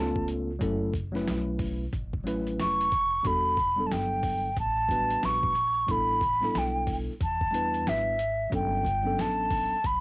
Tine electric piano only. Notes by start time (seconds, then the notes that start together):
Already playing: A3 B3 C#4 A4
0.02 F4
0.59 F#3 A3 C#4 E4 A4
1.12 F#3 A3 C#4 E4 B4
2.24 F#3 A3 C#4 E4 B4
3.23 G3 B3 D4 F#4 A4
3.76 F#3 G3 B3 D4 A4
4.88 F#3 B3 D4 F#4 B4
4.95 G3
5.87 G3 B3 D4 E4
5.91 A4
6.40 G3 B3 D4 E4
6.44 A4
7.51 G3 B3 D4 E4 B4
8.50 F#3 B3 C#4 D4 A4
9.03 F#3 B3 C#4 D4 A4